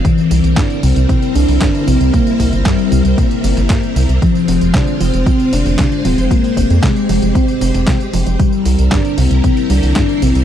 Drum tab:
HH |x-oxxxoxxxooxxox|xxoxxxoxxxoxxxox|x-oxxxoxxxooxxox|xxoxxxoxxxoxxxox|
TB |xxxxxxxxxxxxxxxx|xxxxxxxxxxxxxxxx|xxxxxxxxxxxxxxxx|xxxxxxxxxxxxxxxx|
CP |----x-------x---|----x-------x---|----x-------x---|----x-------x---|
SD |----o-------o---|----o------oo---|----o-------o---|----o------oo---|
BD |o---o---o---o---|o-o-o---o---o---|o---o---o---o---|o-o-o---o---o---|

HH |x-oxxxoxxxooxxox|
TB |xxxxxxxxxxxxxxxx|
CP |----x-------x---|
SD |----o-------o---|
BD |o---o---o---o---|